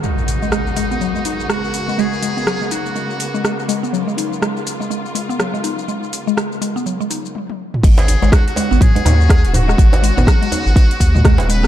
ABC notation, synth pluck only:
X:1
M:4/4
L:1/16
Q:"Swing 16ths" 1/4=123
K:G#dor
V:1 name="Synth pluck" clef=bass
G, z2 G, G, z G, B, F, G, D z G, z2 G, | G, z G, B, F, G, D z G, z2 G, G, z G, B, | F, G, D z G, z2 G, G, z G, B, F, G, D z | G, z2 G, G, z G, B, F, G, D z4 z |
G, z2 G, G, z G, B, F, G, D z G, z2 G, | G, z G, B, F, G, D z G, z2 G, G, z G, B, |]